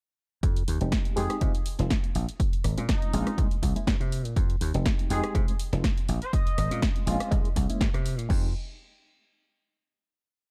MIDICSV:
0, 0, Header, 1, 6, 480
1, 0, Start_track
1, 0, Key_signature, -4, "minor"
1, 0, Tempo, 491803
1, 420, Time_signature, 4, 2, 24, 8
1, 10249, End_track
2, 0, Start_track
2, 0, Title_t, "Horn section"
2, 0, Program_c, 0, 61
2, 1144, Note_on_c, 0, 68, 89
2, 1325, Note_off_c, 0, 68, 0
2, 2821, Note_on_c, 0, 63, 93
2, 3352, Note_off_c, 0, 63, 0
2, 4981, Note_on_c, 0, 68, 92
2, 5164, Note_off_c, 0, 68, 0
2, 6070, Note_on_c, 0, 72, 93
2, 6158, Note_off_c, 0, 72, 0
2, 6179, Note_on_c, 0, 75, 97
2, 6659, Note_off_c, 0, 75, 0
2, 10249, End_track
3, 0, Start_track
3, 0, Title_t, "Reed electric piano"
3, 0, Program_c, 1, 4
3, 785, Note_on_c, 1, 56, 75
3, 788, Note_on_c, 1, 60, 68
3, 790, Note_on_c, 1, 63, 68
3, 793, Note_on_c, 1, 67, 81
3, 1111, Note_off_c, 1, 56, 0
3, 1113, Note_off_c, 1, 60, 0
3, 1114, Note_off_c, 1, 63, 0
3, 1115, Note_off_c, 1, 67, 0
3, 1132, Note_on_c, 1, 56, 95
3, 1135, Note_on_c, 1, 60, 92
3, 1138, Note_on_c, 1, 63, 86
3, 1140, Note_on_c, 1, 67, 110
3, 1349, Note_off_c, 1, 56, 0
3, 1351, Note_off_c, 1, 60, 0
3, 1352, Note_off_c, 1, 63, 0
3, 1353, Note_off_c, 1, 67, 0
3, 1374, Note_on_c, 1, 56, 77
3, 1377, Note_on_c, 1, 60, 71
3, 1380, Note_on_c, 1, 63, 72
3, 1383, Note_on_c, 1, 65, 85
3, 1537, Note_off_c, 1, 56, 0
3, 1539, Note_off_c, 1, 60, 0
3, 1540, Note_off_c, 1, 63, 0
3, 1541, Note_off_c, 1, 65, 0
3, 1744, Note_on_c, 1, 56, 72
3, 1746, Note_on_c, 1, 60, 66
3, 1749, Note_on_c, 1, 63, 63
3, 1753, Note_on_c, 1, 65, 77
3, 1894, Note_off_c, 1, 56, 0
3, 1895, Note_off_c, 1, 60, 0
3, 1896, Note_off_c, 1, 63, 0
3, 1898, Note_off_c, 1, 65, 0
3, 2705, Note_on_c, 1, 56, 76
3, 2707, Note_on_c, 1, 60, 68
3, 2710, Note_on_c, 1, 61, 70
3, 2713, Note_on_c, 1, 65, 82
3, 3031, Note_off_c, 1, 56, 0
3, 3032, Note_off_c, 1, 60, 0
3, 3033, Note_off_c, 1, 61, 0
3, 3035, Note_off_c, 1, 65, 0
3, 3058, Note_on_c, 1, 56, 99
3, 3060, Note_on_c, 1, 60, 90
3, 3063, Note_on_c, 1, 61, 91
3, 3066, Note_on_c, 1, 65, 107
3, 3272, Note_off_c, 1, 56, 0
3, 3273, Note_off_c, 1, 60, 0
3, 3275, Note_off_c, 1, 61, 0
3, 3276, Note_off_c, 1, 65, 0
3, 3295, Note_on_c, 1, 56, 79
3, 3297, Note_on_c, 1, 58, 75
3, 3300, Note_on_c, 1, 61, 72
3, 3304, Note_on_c, 1, 64, 87
3, 3457, Note_off_c, 1, 56, 0
3, 3459, Note_off_c, 1, 58, 0
3, 3460, Note_off_c, 1, 61, 0
3, 3462, Note_off_c, 1, 64, 0
3, 3665, Note_on_c, 1, 56, 71
3, 3666, Note_on_c, 1, 58, 65
3, 3670, Note_on_c, 1, 61, 64
3, 3673, Note_on_c, 1, 64, 77
3, 3814, Note_off_c, 1, 56, 0
3, 3815, Note_off_c, 1, 58, 0
3, 3817, Note_off_c, 1, 61, 0
3, 3818, Note_off_c, 1, 64, 0
3, 4627, Note_on_c, 1, 56, 77
3, 4631, Note_on_c, 1, 60, 70
3, 4634, Note_on_c, 1, 63, 70
3, 4635, Note_on_c, 1, 67, 85
3, 4952, Note_off_c, 1, 56, 0
3, 4954, Note_off_c, 1, 60, 0
3, 4956, Note_off_c, 1, 63, 0
3, 4956, Note_off_c, 1, 67, 0
3, 4981, Note_on_c, 1, 56, 101
3, 4983, Note_on_c, 1, 60, 92
3, 4986, Note_on_c, 1, 63, 92
3, 4987, Note_on_c, 1, 67, 108
3, 5193, Note_off_c, 1, 56, 0
3, 5194, Note_off_c, 1, 60, 0
3, 5196, Note_off_c, 1, 63, 0
3, 5197, Note_off_c, 1, 67, 0
3, 5217, Note_on_c, 1, 56, 79
3, 5218, Note_on_c, 1, 60, 71
3, 5222, Note_on_c, 1, 63, 72
3, 5224, Note_on_c, 1, 65, 88
3, 5378, Note_off_c, 1, 56, 0
3, 5379, Note_off_c, 1, 60, 0
3, 5381, Note_off_c, 1, 63, 0
3, 5382, Note_off_c, 1, 65, 0
3, 5586, Note_on_c, 1, 56, 72
3, 5590, Note_on_c, 1, 60, 64
3, 5590, Note_on_c, 1, 63, 67
3, 5593, Note_on_c, 1, 65, 78
3, 5734, Note_off_c, 1, 56, 0
3, 5736, Note_off_c, 1, 60, 0
3, 5737, Note_off_c, 1, 63, 0
3, 5738, Note_off_c, 1, 65, 0
3, 6544, Note_on_c, 1, 56, 79
3, 6546, Note_on_c, 1, 60, 69
3, 6548, Note_on_c, 1, 61, 70
3, 6553, Note_on_c, 1, 65, 86
3, 6870, Note_off_c, 1, 56, 0
3, 6872, Note_off_c, 1, 60, 0
3, 6873, Note_off_c, 1, 61, 0
3, 6875, Note_off_c, 1, 65, 0
3, 6897, Note_on_c, 1, 56, 101
3, 6901, Note_on_c, 1, 60, 93
3, 6902, Note_on_c, 1, 61, 89
3, 6904, Note_on_c, 1, 65, 112
3, 7112, Note_off_c, 1, 56, 0
3, 7113, Note_off_c, 1, 60, 0
3, 7114, Note_off_c, 1, 61, 0
3, 7115, Note_off_c, 1, 65, 0
3, 7135, Note_on_c, 1, 56, 81
3, 7136, Note_on_c, 1, 58, 74
3, 7140, Note_on_c, 1, 61, 74
3, 7141, Note_on_c, 1, 64, 91
3, 7297, Note_off_c, 1, 56, 0
3, 7298, Note_off_c, 1, 58, 0
3, 7300, Note_off_c, 1, 61, 0
3, 7300, Note_off_c, 1, 64, 0
3, 7507, Note_on_c, 1, 56, 71
3, 7508, Note_on_c, 1, 58, 67
3, 7511, Note_on_c, 1, 61, 67
3, 7514, Note_on_c, 1, 64, 81
3, 7655, Note_off_c, 1, 56, 0
3, 7656, Note_off_c, 1, 58, 0
3, 7657, Note_off_c, 1, 61, 0
3, 7658, Note_off_c, 1, 64, 0
3, 8087, Note_on_c, 1, 56, 86
3, 8094, Note_on_c, 1, 60, 76
3, 8103, Note_on_c, 1, 63, 77
3, 8111, Note_on_c, 1, 67, 93
3, 8275, Note_off_c, 1, 56, 0
3, 8278, Note_off_c, 1, 60, 0
3, 8283, Note_off_c, 1, 63, 0
3, 8287, Note_off_c, 1, 67, 0
3, 10249, End_track
4, 0, Start_track
4, 0, Title_t, "Slap bass"
4, 0, Program_c, 2, 36
4, 422, Note_on_c, 2, 41, 92
4, 608, Note_off_c, 2, 41, 0
4, 664, Note_on_c, 2, 39, 82
4, 760, Note_off_c, 2, 39, 0
4, 792, Note_on_c, 2, 29, 94
4, 875, Note_off_c, 2, 29, 0
4, 1141, Note_on_c, 2, 41, 89
4, 1238, Note_off_c, 2, 41, 0
4, 1380, Note_on_c, 2, 48, 82
4, 1478, Note_off_c, 2, 48, 0
4, 1749, Note_on_c, 2, 29, 86
4, 1834, Note_off_c, 2, 29, 0
4, 2101, Note_on_c, 2, 34, 93
4, 2198, Note_off_c, 2, 34, 0
4, 2580, Note_on_c, 2, 32, 84
4, 2678, Note_off_c, 2, 32, 0
4, 2711, Note_on_c, 2, 46, 96
4, 2794, Note_off_c, 2, 46, 0
4, 3060, Note_on_c, 2, 34, 95
4, 3158, Note_off_c, 2, 34, 0
4, 3298, Note_on_c, 2, 36, 96
4, 3397, Note_off_c, 2, 36, 0
4, 3539, Note_on_c, 2, 36, 86
4, 3638, Note_off_c, 2, 36, 0
4, 3780, Note_on_c, 2, 43, 98
4, 3878, Note_off_c, 2, 43, 0
4, 3908, Note_on_c, 2, 48, 78
4, 4149, Note_off_c, 2, 48, 0
4, 4149, Note_on_c, 2, 46, 83
4, 4233, Note_off_c, 2, 46, 0
4, 4261, Note_on_c, 2, 41, 97
4, 4447, Note_off_c, 2, 41, 0
4, 4501, Note_on_c, 2, 39, 85
4, 4598, Note_off_c, 2, 39, 0
4, 4630, Note_on_c, 2, 29, 97
4, 4714, Note_off_c, 2, 29, 0
4, 4981, Note_on_c, 2, 41, 93
4, 5079, Note_off_c, 2, 41, 0
4, 5221, Note_on_c, 2, 48, 84
4, 5319, Note_off_c, 2, 48, 0
4, 5588, Note_on_c, 2, 29, 91
4, 5673, Note_off_c, 2, 29, 0
4, 5940, Note_on_c, 2, 34, 97
4, 6038, Note_off_c, 2, 34, 0
4, 6421, Note_on_c, 2, 32, 87
4, 6518, Note_off_c, 2, 32, 0
4, 6550, Note_on_c, 2, 46, 98
4, 6634, Note_off_c, 2, 46, 0
4, 6899, Note_on_c, 2, 34, 94
4, 6998, Note_off_c, 2, 34, 0
4, 7141, Note_on_c, 2, 36, 99
4, 7238, Note_off_c, 2, 36, 0
4, 7380, Note_on_c, 2, 36, 84
4, 7478, Note_off_c, 2, 36, 0
4, 7620, Note_on_c, 2, 43, 96
4, 7718, Note_off_c, 2, 43, 0
4, 7749, Note_on_c, 2, 48, 79
4, 7987, Note_off_c, 2, 48, 0
4, 7987, Note_on_c, 2, 46, 83
4, 8073, Note_off_c, 2, 46, 0
4, 8100, Note_on_c, 2, 41, 97
4, 8323, Note_off_c, 2, 41, 0
4, 10249, End_track
5, 0, Start_track
5, 0, Title_t, "Muted slap bass strokes"
5, 2469, Note_on_c, 9, 29, 41
5, 2567, Note_off_c, 9, 29, 0
5, 6310, Note_on_c, 9, 29, 41
5, 6408, Note_off_c, 9, 29, 0
5, 7270, Note_on_c, 9, 29, 44
5, 7367, Note_off_c, 9, 29, 0
5, 7508, Note_on_c, 9, 29, 44
5, 7605, Note_off_c, 9, 29, 0
5, 10249, End_track
6, 0, Start_track
6, 0, Title_t, "Drums"
6, 421, Note_on_c, 9, 36, 117
6, 423, Note_on_c, 9, 42, 65
6, 519, Note_off_c, 9, 36, 0
6, 520, Note_off_c, 9, 42, 0
6, 551, Note_on_c, 9, 42, 41
6, 649, Note_off_c, 9, 42, 0
6, 662, Note_on_c, 9, 46, 100
6, 760, Note_off_c, 9, 46, 0
6, 789, Note_on_c, 9, 42, 41
6, 887, Note_off_c, 9, 42, 0
6, 897, Note_on_c, 9, 38, 122
6, 899, Note_on_c, 9, 42, 68
6, 901, Note_on_c, 9, 36, 115
6, 995, Note_off_c, 9, 38, 0
6, 996, Note_off_c, 9, 42, 0
6, 998, Note_off_c, 9, 36, 0
6, 1027, Note_on_c, 9, 42, 40
6, 1125, Note_off_c, 9, 42, 0
6, 1139, Note_on_c, 9, 46, 91
6, 1236, Note_off_c, 9, 46, 0
6, 1268, Note_on_c, 9, 37, 71
6, 1268, Note_on_c, 9, 42, 38
6, 1366, Note_off_c, 9, 37, 0
6, 1366, Note_off_c, 9, 42, 0
6, 1378, Note_on_c, 9, 42, 66
6, 1380, Note_on_c, 9, 36, 115
6, 1476, Note_off_c, 9, 42, 0
6, 1478, Note_off_c, 9, 36, 0
6, 1509, Note_on_c, 9, 42, 41
6, 1606, Note_off_c, 9, 42, 0
6, 1617, Note_on_c, 9, 46, 104
6, 1715, Note_off_c, 9, 46, 0
6, 1746, Note_on_c, 9, 38, 40
6, 1748, Note_on_c, 9, 42, 42
6, 1844, Note_off_c, 9, 38, 0
6, 1845, Note_off_c, 9, 42, 0
6, 1858, Note_on_c, 9, 38, 120
6, 1860, Note_on_c, 9, 36, 117
6, 1860, Note_on_c, 9, 42, 65
6, 1956, Note_off_c, 9, 38, 0
6, 1957, Note_off_c, 9, 36, 0
6, 1958, Note_off_c, 9, 42, 0
6, 1989, Note_on_c, 9, 42, 39
6, 2086, Note_off_c, 9, 42, 0
6, 2099, Note_on_c, 9, 46, 89
6, 2196, Note_off_c, 9, 46, 0
6, 2231, Note_on_c, 9, 42, 38
6, 2328, Note_off_c, 9, 42, 0
6, 2340, Note_on_c, 9, 36, 121
6, 2341, Note_on_c, 9, 42, 66
6, 2437, Note_off_c, 9, 36, 0
6, 2439, Note_off_c, 9, 42, 0
6, 2470, Note_on_c, 9, 42, 41
6, 2568, Note_off_c, 9, 42, 0
6, 2580, Note_on_c, 9, 37, 56
6, 2580, Note_on_c, 9, 46, 104
6, 2678, Note_off_c, 9, 37, 0
6, 2678, Note_off_c, 9, 46, 0
6, 2709, Note_on_c, 9, 42, 40
6, 2807, Note_off_c, 9, 42, 0
6, 2818, Note_on_c, 9, 38, 125
6, 2819, Note_on_c, 9, 36, 122
6, 2820, Note_on_c, 9, 42, 66
6, 2916, Note_off_c, 9, 38, 0
6, 2917, Note_off_c, 9, 36, 0
6, 2918, Note_off_c, 9, 42, 0
6, 2949, Note_on_c, 9, 42, 38
6, 3047, Note_off_c, 9, 42, 0
6, 3059, Note_on_c, 9, 46, 100
6, 3157, Note_off_c, 9, 46, 0
6, 3189, Note_on_c, 9, 37, 73
6, 3189, Note_on_c, 9, 42, 40
6, 3287, Note_off_c, 9, 37, 0
6, 3287, Note_off_c, 9, 42, 0
6, 3299, Note_on_c, 9, 36, 116
6, 3300, Note_on_c, 9, 42, 69
6, 3396, Note_off_c, 9, 36, 0
6, 3398, Note_off_c, 9, 42, 0
6, 3428, Note_on_c, 9, 42, 39
6, 3526, Note_off_c, 9, 42, 0
6, 3539, Note_on_c, 9, 36, 63
6, 3541, Note_on_c, 9, 46, 107
6, 3637, Note_off_c, 9, 36, 0
6, 3639, Note_off_c, 9, 46, 0
6, 3671, Note_on_c, 9, 42, 40
6, 3769, Note_off_c, 9, 42, 0
6, 3779, Note_on_c, 9, 36, 122
6, 3781, Note_on_c, 9, 38, 125
6, 3782, Note_on_c, 9, 42, 65
6, 3877, Note_off_c, 9, 36, 0
6, 3878, Note_off_c, 9, 38, 0
6, 3880, Note_off_c, 9, 42, 0
6, 3911, Note_on_c, 9, 42, 40
6, 4009, Note_off_c, 9, 42, 0
6, 4024, Note_on_c, 9, 46, 90
6, 4122, Note_off_c, 9, 46, 0
6, 4150, Note_on_c, 9, 42, 40
6, 4247, Note_off_c, 9, 42, 0
6, 4259, Note_on_c, 9, 36, 122
6, 4261, Note_on_c, 9, 42, 63
6, 4357, Note_off_c, 9, 36, 0
6, 4358, Note_off_c, 9, 42, 0
6, 4389, Note_on_c, 9, 42, 38
6, 4486, Note_off_c, 9, 42, 0
6, 4500, Note_on_c, 9, 46, 109
6, 4598, Note_off_c, 9, 46, 0
6, 4629, Note_on_c, 9, 42, 39
6, 4727, Note_off_c, 9, 42, 0
6, 4739, Note_on_c, 9, 36, 126
6, 4739, Note_on_c, 9, 38, 122
6, 4741, Note_on_c, 9, 42, 65
6, 4837, Note_off_c, 9, 36, 0
6, 4837, Note_off_c, 9, 38, 0
6, 4838, Note_off_c, 9, 42, 0
6, 4871, Note_on_c, 9, 42, 38
6, 4969, Note_off_c, 9, 42, 0
6, 4981, Note_on_c, 9, 46, 100
6, 5078, Note_off_c, 9, 46, 0
6, 5110, Note_on_c, 9, 37, 73
6, 5110, Note_on_c, 9, 42, 38
6, 5207, Note_off_c, 9, 37, 0
6, 5207, Note_off_c, 9, 42, 0
6, 5220, Note_on_c, 9, 36, 122
6, 5223, Note_on_c, 9, 42, 64
6, 5318, Note_off_c, 9, 36, 0
6, 5320, Note_off_c, 9, 42, 0
6, 5350, Note_on_c, 9, 42, 38
6, 5448, Note_off_c, 9, 42, 0
6, 5461, Note_on_c, 9, 46, 112
6, 5558, Note_off_c, 9, 46, 0
6, 5590, Note_on_c, 9, 38, 40
6, 5592, Note_on_c, 9, 42, 40
6, 5688, Note_off_c, 9, 38, 0
6, 5689, Note_off_c, 9, 42, 0
6, 5700, Note_on_c, 9, 36, 124
6, 5700, Note_on_c, 9, 38, 121
6, 5702, Note_on_c, 9, 42, 63
6, 5797, Note_off_c, 9, 36, 0
6, 5798, Note_off_c, 9, 38, 0
6, 5800, Note_off_c, 9, 42, 0
6, 5831, Note_on_c, 9, 42, 37
6, 5929, Note_off_c, 9, 42, 0
6, 5940, Note_on_c, 9, 46, 94
6, 6037, Note_off_c, 9, 46, 0
6, 6069, Note_on_c, 9, 42, 37
6, 6166, Note_off_c, 9, 42, 0
6, 6180, Note_on_c, 9, 36, 124
6, 6182, Note_on_c, 9, 42, 65
6, 6278, Note_off_c, 9, 36, 0
6, 6280, Note_off_c, 9, 42, 0
6, 6312, Note_on_c, 9, 42, 38
6, 6409, Note_off_c, 9, 42, 0
6, 6422, Note_on_c, 9, 37, 62
6, 6422, Note_on_c, 9, 46, 104
6, 6520, Note_off_c, 9, 37, 0
6, 6520, Note_off_c, 9, 46, 0
6, 6552, Note_on_c, 9, 42, 40
6, 6650, Note_off_c, 9, 42, 0
6, 6660, Note_on_c, 9, 36, 123
6, 6660, Note_on_c, 9, 38, 118
6, 6661, Note_on_c, 9, 42, 65
6, 6757, Note_off_c, 9, 38, 0
6, 6758, Note_off_c, 9, 36, 0
6, 6759, Note_off_c, 9, 42, 0
6, 6790, Note_on_c, 9, 42, 38
6, 6887, Note_off_c, 9, 42, 0
6, 6901, Note_on_c, 9, 46, 98
6, 6999, Note_off_c, 9, 46, 0
6, 7031, Note_on_c, 9, 37, 79
6, 7031, Note_on_c, 9, 42, 38
6, 7128, Note_off_c, 9, 37, 0
6, 7128, Note_off_c, 9, 42, 0
6, 7140, Note_on_c, 9, 36, 124
6, 7142, Note_on_c, 9, 42, 64
6, 7237, Note_off_c, 9, 36, 0
6, 7239, Note_off_c, 9, 42, 0
6, 7273, Note_on_c, 9, 42, 37
6, 7371, Note_off_c, 9, 42, 0
6, 7380, Note_on_c, 9, 36, 63
6, 7381, Note_on_c, 9, 46, 110
6, 7477, Note_off_c, 9, 36, 0
6, 7479, Note_off_c, 9, 46, 0
6, 7511, Note_on_c, 9, 42, 40
6, 7609, Note_off_c, 9, 42, 0
6, 7620, Note_on_c, 9, 36, 120
6, 7621, Note_on_c, 9, 38, 117
6, 7622, Note_on_c, 9, 42, 63
6, 7717, Note_off_c, 9, 36, 0
6, 7718, Note_off_c, 9, 38, 0
6, 7720, Note_off_c, 9, 42, 0
6, 7752, Note_on_c, 9, 37, 62
6, 7752, Note_on_c, 9, 42, 37
6, 7850, Note_off_c, 9, 37, 0
6, 7850, Note_off_c, 9, 42, 0
6, 7863, Note_on_c, 9, 46, 96
6, 7960, Note_off_c, 9, 46, 0
6, 7992, Note_on_c, 9, 42, 37
6, 8089, Note_off_c, 9, 42, 0
6, 8099, Note_on_c, 9, 36, 113
6, 8101, Note_on_c, 9, 49, 90
6, 8197, Note_off_c, 9, 36, 0
6, 8199, Note_off_c, 9, 49, 0
6, 10249, End_track
0, 0, End_of_file